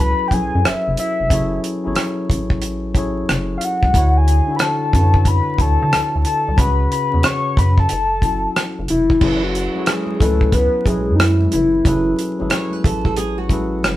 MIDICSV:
0, 0, Header, 1, 6, 480
1, 0, Start_track
1, 0, Key_signature, 3, "minor"
1, 0, Tempo, 659341
1, 947, Time_signature, 4, 2, 24, 8
1, 10167, End_track
2, 0, Start_track
2, 0, Title_t, "Soft synth lead"
2, 0, Program_c, 0, 80
2, 2, Note_on_c, 0, 83, 110
2, 202, Note_on_c, 0, 79, 67
2, 213, Note_off_c, 0, 83, 0
2, 241, Note_on_c, 0, 80, 105
2, 252, Note_off_c, 0, 79, 0
2, 483, Note_on_c, 0, 76, 89
2, 493, Note_off_c, 0, 80, 0
2, 715, Note_off_c, 0, 76, 0
2, 724, Note_on_c, 0, 76, 74
2, 1166, Note_off_c, 0, 76, 0
2, 2603, Note_on_c, 0, 77, 61
2, 2652, Note_on_c, 0, 78, 86
2, 2662, Note_off_c, 0, 77, 0
2, 3039, Note_on_c, 0, 80, 84
2, 3050, Note_off_c, 0, 78, 0
2, 3321, Note_on_c, 0, 83, 65
2, 3332, Note_off_c, 0, 80, 0
2, 3363, Note_on_c, 0, 81, 89
2, 3374, Note_off_c, 0, 83, 0
2, 3842, Note_on_c, 0, 83, 106
2, 3853, Note_off_c, 0, 81, 0
2, 4084, Note_on_c, 0, 81, 115
2, 4095, Note_off_c, 0, 83, 0
2, 4555, Note_off_c, 0, 81, 0
2, 4559, Note_on_c, 0, 81, 84
2, 4793, Note_on_c, 0, 83, 97
2, 4804, Note_off_c, 0, 81, 0
2, 5030, Note_off_c, 0, 83, 0
2, 5041, Note_on_c, 0, 83, 91
2, 5281, Note_on_c, 0, 85, 106
2, 5292, Note_off_c, 0, 83, 0
2, 5521, Note_on_c, 0, 83, 102
2, 5532, Note_off_c, 0, 85, 0
2, 5666, Note_off_c, 0, 83, 0
2, 5675, Note_on_c, 0, 81, 97
2, 6446, Note_off_c, 0, 81, 0
2, 6481, Note_on_c, 0, 64, 76
2, 6867, Note_on_c, 0, 66, 92
2, 6878, Note_off_c, 0, 64, 0
2, 7190, Note_on_c, 0, 68, 95
2, 7201, Note_off_c, 0, 66, 0
2, 7433, Note_on_c, 0, 69, 96
2, 7444, Note_off_c, 0, 68, 0
2, 7669, Note_off_c, 0, 69, 0
2, 7673, Note_on_c, 0, 71, 104
2, 7910, Note_on_c, 0, 68, 95
2, 7921, Note_off_c, 0, 71, 0
2, 8111, Note_off_c, 0, 68, 0
2, 8120, Note_on_c, 0, 63, 67
2, 8153, Note_on_c, 0, 64, 88
2, 8164, Note_off_c, 0, 63, 0
2, 8390, Note_off_c, 0, 64, 0
2, 8395, Note_on_c, 0, 64, 82
2, 8842, Note_off_c, 0, 64, 0
2, 10167, End_track
3, 0, Start_track
3, 0, Title_t, "Nylon-string guitar"
3, 0, Program_c, 1, 24
3, 9114, Note_on_c, 1, 73, 64
3, 9266, Note_off_c, 1, 73, 0
3, 9266, Note_on_c, 1, 71, 68
3, 9346, Note_off_c, 1, 71, 0
3, 9354, Note_on_c, 1, 69, 79
3, 9495, Note_off_c, 1, 69, 0
3, 9504, Note_on_c, 1, 69, 75
3, 9585, Note_off_c, 1, 69, 0
3, 9589, Note_on_c, 1, 68, 75
3, 9733, Note_off_c, 1, 68, 0
3, 9739, Note_on_c, 1, 66, 68
3, 10167, Note_off_c, 1, 66, 0
3, 10167, End_track
4, 0, Start_track
4, 0, Title_t, "Tine electric piano"
4, 0, Program_c, 2, 4
4, 0, Control_c, 2, 64, 127
4, 0, Note_on_c, 2, 54, 65
4, 0, Note_on_c, 2, 61, 55
4, 0, Note_on_c, 2, 64, 62
4, 0, Note_on_c, 2, 66, 54
4, 0, Note_on_c, 2, 68, 61
4, 0, Note_on_c, 2, 69, 59
4, 0, Note_on_c, 2, 71, 72
4, 194, Note_off_c, 2, 54, 0
4, 197, Note_off_c, 2, 61, 0
4, 201, Note_off_c, 2, 64, 0
4, 204, Note_off_c, 2, 66, 0
4, 207, Note_off_c, 2, 69, 0
4, 211, Note_off_c, 2, 71, 0
4, 223, Note_on_c, 2, 54, 58
4, 228, Note_on_c, 2, 61, 54
4, 235, Note_on_c, 2, 64, 53
4, 242, Note_off_c, 2, 68, 0
4, 242, Note_on_c, 2, 68, 56
4, 247, Note_on_c, 2, 69, 57
4, 254, Note_on_c, 2, 73, 63
4, 896, Note_off_c, 2, 54, 0
4, 899, Note_off_c, 2, 61, 0
4, 902, Note_off_c, 2, 64, 0
4, 906, Note_off_c, 2, 68, 0
4, 908, Note_off_c, 2, 69, 0
4, 912, Note_off_c, 2, 73, 0
4, 943, Note_on_c, 2, 54, 79
4, 947, Note_on_c, 2, 61, 77
4, 955, Note_on_c, 2, 64, 79
4, 960, Note_on_c, 2, 68, 79
4, 968, Note_on_c, 2, 69, 75
4, 974, Note_on_c, 2, 73, 91
4, 1295, Note_off_c, 2, 54, 0
4, 1297, Note_off_c, 2, 61, 0
4, 1301, Note_off_c, 2, 64, 0
4, 1303, Note_off_c, 2, 68, 0
4, 1307, Note_off_c, 2, 69, 0
4, 1310, Note_off_c, 2, 73, 0
4, 1333, Note_on_c, 2, 54, 67
4, 1339, Note_on_c, 2, 61, 64
4, 1346, Note_on_c, 2, 64, 65
4, 1353, Note_on_c, 2, 68, 60
4, 1359, Note_on_c, 2, 69, 62
4, 1365, Note_on_c, 2, 73, 83
4, 2087, Note_off_c, 2, 54, 0
4, 2090, Note_off_c, 2, 61, 0
4, 2094, Note_off_c, 2, 64, 0
4, 2097, Note_off_c, 2, 68, 0
4, 2100, Note_off_c, 2, 69, 0
4, 2103, Note_off_c, 2, 73, 0
4, 2140, Note_on_c, 2, 54, 68
4, 2146, Note_on_c, 2, 61, 67
4, 2153, Note_on_c, 2, 64, 68
4, 2160, Note_on_c, 2, 68, 72
4, 2165, Note_on_c, 2, 69, 69
4, 2172, Note_on_c, 2, 73, 92
4, 2815, Note_off_c, 2, 54, 0
4, 2818, Note_off_c, 2, 61, 0
4, 2821, Note_off_c, 2, 64, 0
4, 2825, Note_off_c, 2, 68, 0
4, 2827, Note_off_c, 2, 69, 0
4, 2831, Note_off_c, 2, 73, 0
4, 2862, Note_on_c, 2, 50, 85
4, 2869, Note_on_c, 2, 62, 77
4, 2877, Control_c, 2, 64, 0
4, 2878, Note_on_c, 2, 64, 78
4, 2885, Note_on_c, 2, 66, 77
4, 2893, Note_on_c, 2, 73, 87
4, 2994, Control_c, 2, 64, 127
4, 3214, Note_off_c, 2, 50, 0
4, 3218, Note_off_c, 2, 62, 0
4, 3222, Note_off_c, 2, 64, 0
4, 3226, Note_off_c, 2, 66, 0
4, 3230, Note_off_c, 2, 73, 0
4, 3256, Note_on_c, 2, 50, 71
4, 3264, Note_on_c, 2, 62, 61
4, 3272, Note_on_c, 2, 64, 56
4, 3281, Note_on_c, 2, 66, 60
4, 3288, Note_on_c, 2, 69, 76
4, 3561, Note_off_c, 2, 50, 0
4, 3565, Note_off_c, 2, 62, 0
4, 3569, Note_off_c, 2, 64, 0
4, 3573, Note_off_c, 2, 66, 0
4, 3577, Note_off_c, 2, 69, 0
4, 3583, Note_on_c, 2, 50, 66
4, 3592, Note_on_c, 2, 62, 61
4, 3599, Note_on_c, 2, 64, 62
4, 3608, Note_on_c, 2, 66, 56
4, 3616, Note_on_c, 2, 71, 63
4, 3661, Note_off_c, 2, 71, 0
4, 3664, Note_on_c, 2, 73, 69
4, 4032, Note_off_c, 2, 50, 0
4, 4037, Note_off_c, 2, 62, 0
4, 4040, Note_off_c, 2, 64, 0
4, 4045, Note_off_c, 2, 66, 0
4, 4062, Note_on_c, 2, 50, 61
4, 4069, Note_on_c, 2, 62, 57
4, 4073, Note_off_c, 2, 73, 0
4, 4077, Note_on_c, 2, 64, 60
4, 4086, Note_on_c, 2, 66, 56
4, 4094, Note_on_c, 2, 73, 69
4, 4735, Note_off_c, 2, 50, 0
4, 4739, Note_off_c, 2, 62, 0
4, 4743, Note_off_c, 2, 64, 0
4, 4748, Note_off_c, 2, 66, 0
4, 4752, Note_off_c, 2, 73, 0
4, 4780, Note_on_c, 2, 49, 84
4, 4788, Note_on_c, 2, 61, 77
4, 4796, Control_c, 2, 64, 0
4, 4796, Note_on_c, 2, 66, 80
4, 4804, Note_on_c, 2, 68, 77
4, 4813, Note_on_c, 2, 71, 96
4, 4905, Control_c, 2, 64, 127
4, 5133, Note_off_c, 2, 49, 0
4, 5137, Note_off_c, 2, 61, 0
4, 5142, Note_off_c, 2, 66, 0
4, 5145, Note_off_c, 2, 68, 0
4, 5150, Note_off_c, 2, 71, 0
4, 5173, Note_on_c, 2, 49, 57
4, 5181, Note_on_c, 2, 61, 55
4, 5189, Note_on_c, 2, 66, 56
4, 5197, Note_on_c, 2, 68, 60
4, 5205, Note_on_c, 2, 73, 63
4, 5744, Note_off_c, 2, 49, 0
4, 5748, Note_off_c, 2, 61, 0
4, 5752, Note_off_c, 2, 66, 0
4, 5755, Control_c, 2, 64, 0
4, 5756, Note_off_c, 2, 68, 0
4, 5760, Note_off_c, 2, 73, 0
4, 5893, Control_c, 2, 64, 127
4, 5978, Note_on_c, 2, 54, 58
4, 5987, Note_on_c, 2, 61, 52
4, 5995, Note_on_c, 2, 64, 62
4, 6003, Note_on_c, 2, 66, 56
4, 6010, Note_on_c, 2, 69, 70
4, 6654, Note_off_c, 2, 54, 0
4, 6658, Note_off_c, 2, 61, 0
4, 6662, Note_off_c, 2, 64, 0
4, 6666, Note_off_c, 2, 66, 0
4, 6670, Note_off_c, 2, 69, 0
4, 6701, Note_on_c, 2, 54, 83
4, 6708, Note_on_c, 2, 61, 75
4, 6713, Note_on_c, 2, 64, 81
4, 6716, Control_c, 2, 64, 0
4, 6721, Note_on_c, 2, 68, 76
4, 6727, Note_on_c, 2, 69, 77
4, 6734, Note_on_c, 2, 71, 92
4, 6848, Control_c, 2, 64, 127
4, 7054, Note_off_c, 2, 54, 0
4, 7057, Note_off_c, 2, 61, 0
4, 7060, Note_off_c, 2, 64, 0
4, 7064, Note_off_c, 2, 68, 0
4, 7067, Note_off_c, 2, 69, 0
4, 7070, Note_off_c, 2, 71, 0
4, 7093, Note_on_c, 2, 54, 66
4, 7099, Note_on_c, 2, 61, 63
4, 7106, Note_on_c, 2, 64, 58
4, 7113, Note_on_c, 2, 68, 62
4, 7120, Note_on_c, 2, 69, 57
4, 7125, Note_on_c, 2, 73, 77
4, 7399, Note_off_c, 2, 54, 0
4, 7403, Note_off_c, 2, 61, 0
4, 7406, Note_off_c, 2, 64, 0
4, 7409, Note_off_c, 2, 68, 0
4, 7413, Note_off_c, 2, 69, 0
4, 7416, Note_off_c, 2, 73, 0
4, 7422, Note_on_c, 2, 54, 69
4, 7427, Note_on_c, 2, 61, 59
4, 7434, Note_on_c, 2, 64, 64
4, 7441, Note_on_c, 2, 80, 59
4, 7448, Note_on_c, 2, 69, 58
4, 7453, Note_on_c, 2, 71, 79
4, 7872, Note_off_c, 2, 54, 0
4, 7874, Note_off_c, 2, 61, 0
4, 7878, Note_off_c, 2, 64, 0
4, 7881, Note_off_c, 2, 80, 0
4, 7885, Note_off_c, 2, 69, 0
4, 7888, Note_off_c, 2, 71, 0
4, 7903, Note_on_c, 2, 54, 59
4, 7909, Note_on_c, 2, 61, 54
4, 7915, Note_on_c, 2, 64, 55
4, 7923, Note_on_c, 2, 68, 54
4, 7928, Note_on_c, 2, 69, 54
4, 7935, Note_on_c, 2, 71, 66
4, 8576, Note_off_c, 2, 54, 0
4, 8579, Note_off_c, 2, 61, 0
4, 8582, Note_off_c, 2, 64, 0
4, 8586, Note_off_c, 2, 68, 0
4, 8589, Note_off_c, 2, 69, 0
4, 8592, Note_off_c, 2, 71, 0
4, 8622, Note_on_c, 2, 54, 84
4, 8627, Note_on_c, 2, 61, 78
4, 8633, Note_on_c, 2, 64, 81
4, 8640, Note_on_c, 2, 68, 79
4, 8646, Note_on_c, 2, 69, 84
4, 8653, Note_on_c, 2, 71, 95
4, 8974, Note_off_c, 2, 54, 0
4, 8977, Note_off_c, 2, 61, 0
4, 8980, Note_off_c, 2, 64, 0
4, 8983, Note_off_c, 2, 68, 0
4, 8986, Note_off_c, 2, 69, 0
4, 8990, Note_off_c, 2, 71, 0
4, 9015, Note_on_c, 2, 54, 71
4, 9023, Note_on_c, 2, 61, 63
4, 9029, Note_on_c, 2, 64, 66
4, 9034, Note_on_c, 2, 68, 67
4, 9040, Note_on_c, 2, 69, 65
4, 9047, Note_on_c, 2, 71, 64
4, 9068, Note_off_c, 2, 71, 0
4, 9094, Note_on_c, 2, 73, 82
4, 9768, Note_off_c, 2, 54, 0
4, 9772, Note_off_c, 2, 61, 0
4, 9775, Note_off_c, 2, 64, 0
4, 9778, Note_off_c, 2, 68, 0
4, 9780, Note_off_c, 2, 69, 0
4, 9808, Note_off_c, 2, 73, 0
4, 9819, Note_on_c, 2, 54, 77
4, 9826, Note_on_c, 2, 61, 69
4, 9833, Note_on_c, 2, 64, 71
4, 9840, Note_on_c, 2, 68, 72
4, 9845, Note_on_c, 2, 69, 72
4, 9850, Note_on_c, 2, 71, 79
4, 10167, Note_off_c, 2, 54, 0
4, 10167, Note_off_c, 2, 61, 0
4, 10167, Note_off_c, 2, 64, 0
4, 10167, Note_off_c, 2, 68, 0
4, 10167, Note_off_c, 2, 69, 0
4, 10167, Note_off_c, 2, 71, 0
4, 10167, End_track
5, 0, Start_track
5, 0, Title_t, "Analog synth bass"
5, 0, Program_c, 3, 38
5, 0, Note_on_c, 3, 37, 97
5, 92, Note_off_c, 3, 37, 0
5, 236, Note_on_c, 3, 35, 84
5, 363, Note_off_c, 3, 35, 0
5, 399, Note_on_c, 3, 42, 92
5, 466, Note_off_c, 3, 42, 0
5, 488, Note_on_c, 3, 30, 46
5, 543, Note_off_c, 3, 30, 0
5, 638, Note_on_c, 3, 30, 86
5, 706, Note_off_c, 3, 30, 0
5, 876, Note_on_c, 3, 29, 80
5, 945, Note_off_c, 3, 29, 0
5, 959, Note_on_c, 3, 30, 85
5, 1160, Note_off_c, 3, 30, 0
5, 1361, Note_on_c, 3, 32, 80
5, 1427, Note_off_c, 3, 32, 0
5, 1681, Note_on_c, 3, 33, 93
5, 2365, Note_off_c, 3, 33, 0
5, 2404, Note_on_c, 3, 30, 77
5, 2604, Note_off_c, 3, 30, 0
5, 2794, Note_on_c, 3, 37, 82
5, 2864, Note_off_c, 3, 37, 0
5, 2878, Note_on_c, 3, 38, 97
5, 3211, Note_off_c, 3, 38, 0
5, 3601, Note_on_c, 3, 42, 95
5, 3933, Note_off_c, 3, 42, 0
5, 4075, Note_on_c, 3, 38, 80
5, 4203, Note_off_c, 3, 38, 0
5, 4239, Note_on_c, 3, 50, 94
5, 4306, Note_off_c, 3, 50, 0
5, 4328, Note_on_c, 3, 38, 42
5, 4384, Note_off_c, 3, 38, 0
5, 4479, Note_on_c, 3, 38, 74
5, 4546, Note_off_c, 3, 38, 0
5, 4719, Note_on_c, 3, 36, 85
5, 4786, Note_off_c, 3, 36, 0
5, 4797, Note_on_c, 3, 37, 101
5, 5000, Note_off_c, 3, 37, 0
5, 5197, Note_on_c, 3, 40, 82
5, 5265, Note_off_c, 3, 40, 0
5, 5519, Note_on_c, 3, 42, 86
5, 5721, Note_off_c, 3, 42, 0
5, 5766, Note_on_c, 3, 30, 96
5, 6171, Note_off_c, 3, 30, 0
5, 6399, Note_on_c, 3, 30, 82
5, 6466, Note_off_c, 3, 30, 0
5, 6484, Note_on_c, 3, 29, 92
5, 6683, Note_off_c, 3, 29, 0
5, 6716, Note_on_c, 3, 30, 93
5, 7050, Note_off_c, 3, 30, 0
5, 7438, Note_on_c, 3, 37, 95
5, 7771, Note_off_c, 3, 37, 0
5, 7912, Note_on_c, 3, 35, 102
5, 8078, Note_on_c, 3, 42, 95
5, 8089, Note_off_c, 3, 35, 0
5, 8352, Note_off_c, 3, 42, 0
5, 8404, Note_on_c, 3, 30, 96
5, 8603, Note_off_c, 3, 30, 0
5, 8636, Note_on_c, 3, 30, 108
5, 8839, Note_off_c, 3, 30, 0
5, 9038, Note_on_c, 3, 32, 82
5, 9106, Note_off_c, 3, 32, 0
5, 9360, Note_on_c, 3, 33, 87
5, 10084, Note_on_c, 3, 30, 85
5, 10095, Note_off_c, 3, 33, 0
5, 10167, Note_off_c, 3, 30, 0
5, 10167, End_track
6, 0, Start_track
6, 0, Title_t, "Drums"
6, 226, Note_on_c, 9, 36, 71
6, 232, Note_on_c, 9, 42, 52
6, 298, Note_off_c, 9, 36, 0
6, 304, Note_off_c, 9, 42, 0
6, 475, Note_on_c, 9, 42, 75
6, 476, Note_on_c, 9, 37, 105
6, 548, Note_off_c, 9, 42, 0
6, 549, Note_off_c, 9, 37, 0
6, 709, Note_on_c, 9, 42, 67
6, 782, Note_off_c, 9, 42, 0
6, 949, Note_on_c, 9, 36, 97
6, 953, Note_on_c, 9, 42, 84
6, 1022, Note_off_c, 9, 36, 0
6, 1026, Note_off_c, 9, 42, 0
6, 1193, Note_on_c, 9, 42, 53
6, 1266, Note_off_c, 9, 42, 0
6, 1423, Note_on_c, 9, 42, 84
6, 1430, Note_on_c, 9, 37, 96
6, 1496, Note_off_c, 9, 42, 0
6, 1502, Note_off_c, 9, 37, 0
6, 1671, Note_on_c, 9, 36, 82
6, 1681, Note_on_c, 9, 42, 64
6, 1744, Note_off_c, 9, 36, 0
6, 1754, Note_off_c, 9, 42, 0
6, 1820, Note_on_c, 9, 36, 76
6, 1893, Note_off_c, 9, 36, 0
6, 1904, Note_on_c, 9, 42, 68
6, 1977, Note_off_c, 9, 42, 0
6, 2145, Note_on_c, 9, 36, 77
6, 2151, Note_on_c, 9, 42, 54
6, 2217, Note_off_c, 9, 36, 0
6, 2224, Note_off_c, 9, 42, 0
6, 2396, Note_on_c, 9, 42, 76
6, 2397, Note_on_c, 9, 37, 100
6, 2468, Note_off_c, 9, 42, 0
6, 2469, Note_off_c, 9, 37, 0
6, 2629, Note_on_c, 9, 42, 64
6, 2701, Note_off_c, 9, 42, 0
6, 2785, Note_on_c, 9, 36, 76
6, 2858, Note_off_c, 9, 36, 0
6, 2868, Note_on_c, 9, 36, 94
6, 2872, Note_on_c, 9, 42, 81
6, 2941, Note_off_c, 9, 36, 0
6, 2945, Note_off_c, 9, 42, 0
6, 3114, Note_on_c, 9, 42, 54
6, 3187, Note_off_c, 9, 42, 0
6, 3342, Note_on_c, 9, 42, 85
6, 3349, Note_on_c, 9, 37, 107
6, 3415, Note_off_c, 9, 42, 0
6, 3422, Note_off_c, 9, 37, 0
6, 3592, Note_on_c, 9, 36, 89
6, 3601, Note_on_c, 9, 42, 62
6, 3664, Note_off_c, 9, 36, 0
6, 3674, Note_off_c, 9, 42, 0
6, 3741, Note_on_c, 9, 36, 72
6, 3814, Note_off_c, 9, 36, 0
6, 3824, Note_on_c, 9, 36, 81
6, 3826, Note_on_c, 9, 42, 77
6, 3896, Note_off_c, 9, 36, 0
6, 3899, Note_off_c, 9, 42, 0
6, 4065, Note_on_c, 9, 36, 84
6, 4073, Note_on_c, 9, 42, 52
6, 4138, Note_off_c, 9, 36, 0
6, 4146, Note_off_c, 9, 42, 0
6, 4315, Note_on_c, 9, 42, 77
6, 4316, Note_on_c, 9, 37, 104
6, 4388, Note_off_c, 9, 42, 0
6, 4389, Note_off_c, 9, 37, 0
6, 4549, Note_on_c, 9, 42, 66
6, 4621, Note_off_c, 9, 42, 0
6, 4789, Note_on_c, 9, 36, 104
6, 4794, Note_on_c, 9, 42, 77
6, 4862, Note_off_c, 9, 36, 0
6, 4866, Note_off_c, 9, 42, 0
6, 5036, Note_on_c, 9, 42, 61
6, 5109, Note_off_c, 9, 42, 0
6, 5265, Note_on_c, 9, 42, 80
6, 5272, Note_on_c, 9, 37, 113
6, 5338, Note_off_c, 9, 42, 0
6, 5344, Note_off_c, 9, 37, 0
6, 5511, Note_on_c, 9, 36, 91
6, 5522, Note_on_c, 9, 42, 62
6, 5584, Note_off_c, 9, 36, 0
6, 5595, Note_off_c, 9, 42, 0
6, 5660, Note_on_c, 9, 36, 74
6, 5733, Note_off_c, 9, 36, 0
6, 5744, Note_on_c, 9, 42, 72
6, 5816, Note_off_c, 9, 42, 0
6, 5984, Note_on_c, 9, 36, 76
6, 5990, Note_on_c, 9, 42, 54
6, 6057, Note_off_c, 9, 36, 0
6, 6063, Note_off_c, 9, 42, 0
6, 6234, Note_on_c, 9, 42, 78
6, 6235, Note_on_c, 9, 37, 103
6, 6307, Note_off_c, 9, 42, 0
6, 6308, Note_off_c, 9, 37, 0
6, 6467, Note_on_c, 9, 42, 66
6, 6540, Note_off_c, 9, 42, 0
6, 6624, Note_on_c, 9, 36, 72
6, 6697, Note_off_c, 9, 36, 0
6, 6705, Note_on_c, 9, 49, 74
6, 6706, Note_on_c, 9, 36, 95
6, 6777, Note_off_c, 9, 49, 0
6, 6779, Note_off_c, 9, 36, 0
6, 6953, Note_on_c, 9, 42, 53
6, 7026, Note_off_c, 9, 42, 0
6, 7103, Note_on_c, 9, 63, 46
6, 7176, Note_off_c, 9, 63, 0
6, 7180, Note_on_c, 9, 42, 86
6, 7187, Note_on_c, 9, 37, 102
6, 7188, Note_on_c, 9, 62, 28
6, 7253, Note_off_c, 9, 42, 0
6, 7260, Note_off_c, 9, 37, 0
6, 7261, Note_off_c, 9, 62, 0
6, 7328, Note_on_c, 9, 63, 53
6, 7401, Note_off_c, 9, 63, 0
6, 7429, Note_on_c, 9, 36, 95
6, 7430, Note_on_c, 9, 62, 25
6, 7430, Note_on_c, 9, 64, 55
6, 7438, Note_on_c, 9, 42, 64
6, 7502, Note_off_c, 9, 36, 0
6, 7503, Note_off_c, 9, 62, 0
6, 7503, Note_off_c, 9, 64, 0
6, 7511, Note_off_c, 9, 42, 0
6, 7579, Note_on_c, 9, 36, 71
6, 7652, Note_off_c, 9, 36, 0
6, 7662, Note_on_c, 9, 36, 84
6, 7663, Note_on_c, 9, 42, 73
6, 7667, Note_on_c, 9, 62, 28
6, 7734, Note_off_c, 9, 36, 0
6, 7736, Note_off_c, 9, 42, 0
6, 7740, Note_off_c, 9, 62, 0
6, 7903, Note_on_c, 9, 36, 76
6, 7909, Note_on_c, 9, 63, 60
6, 7910, Note_on_c, 9, 42, 50
6, 7976, Note_off_c, 9, 36, 0
6, 7982, Note_off_c, 9, 42, 0
6, 7982, Note_off_c, 9, 63, 0
6, 8149, Note_on_c, 9, 63, 65
6, 8152, Note_on_c, 9, 42, 82
6, 8153, Note_on_c, 9, 37, 112
6, 8222, Note_off_c, 9, 63, 0
6, 8224, Note_off_c, 9, 42, 0
6, 8225, Note_off_c, 9, 37, 0
6, 8303, Note_on_c, 9, 63, 68
6, 8376, Note_off_c, 9, 63, 0
6, 8380, Note_on_c, 9, 64, 56
6, 8385, Note_on_c, 9, 42, 65
6, 8453, Note_off_c, 9, 64, 0
6, 8458, Note_off_c, 9, 42, 0
6, 8627, Note_on_c, 9, 36, 98
6, 8628, Note_on_c, 9, 62, 26
6, 8631, Note_on_c, 9, 42, 75
6, 8700, Note_off_c, 9, 36, 0
6, 8701, Note_off_c, 9, 62, 0
6, 8704, Note_off_c, 9, 42, 0
6, 8872, Note_on_c, 9, 42, 51
6, 8872, Note_on_c, 9, 62, 25
6, 8945, Note_off_c, 9, 42, 0
6, 8945, Note_off_c, 9, 62, 0
6, 9026, Note_on_c, 9, 63, 43
6, 9098, Note_off_c, 9, 63, 0
6, 9101, Note_on_c, 9, 42, 87
6, 9107, Note_on_c, 9, 37, 110
6, 9173, Note_off_c, 9, 42, 0
6, 9180, Note_off_c, 9, 37, 0
6, 9250, Note_on_c, 9, 63, 55
6, 9323, Note_off_c, 9, 63, 0
6, 9350, Note_on_c, 9, 36, 94
6, 9353, Note_on_c, 9, 64, 53
6, 9358, Note_on_c, 9, 42, 67
6, 9422, Note_off_c, 9, 36, 0
6, 9426, Note_off_c, 9, 64, 0
6, 9431, Note_off_c, 9, 42, 0
6, 9499, Note_on_c, 9, 36, 74
6, 9572, Note_off_c, 9, 36, 0
6, 9584, Note_on_c, 9, 42, 72
6, 9588, Note_on_c, 9, 62, 28
6, 9656, Note_off_c, 9, 42, 0
6, 9661, Note_off_c, 9, 62, 0
6, 9824, Note_on_c, 9, 36, 75
6, 9829, Note_on_c, 9, 63, 54
6, 9831, Note_on_c, 9, 42, 56
6, 9897, Note_off_c, 9, 36, 0
6, 9902, Note_off_c, 9, 63, 0
6, 9903, Note_off_c, 9, 42, 0
6, 10071, Note_on_c, 9, 63, 63
6, 10077, Note_on_c, 9, 42, 75
6, 10078, Note_on_c, 9, 37, 96
6, 10143, Note_off_c, 9, 63, 0
6, 10150, Note_off_c, 9, 42, 0
6, 10151, Note_off_c, 9, 37, 0
6, 10167, End_track
0, 0, End_of_file